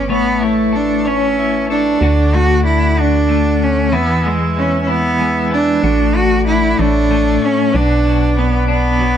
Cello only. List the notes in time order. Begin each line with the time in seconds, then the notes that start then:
0.11 B3
0.43 A3
0.75 D4
1.07 C#4
1.70 D4
2.35 F#4
2.66 E4
2.98 D4
3.63 C#4
3.93 B3
4.25 G#3
4.59 C#4
4.82 C#4
4.89 B3
5.53 D4
6.16 F#4
6.47 E4
6.80 D4
7.45 C#4
7.76 D4
8.38 B3
8.70 B3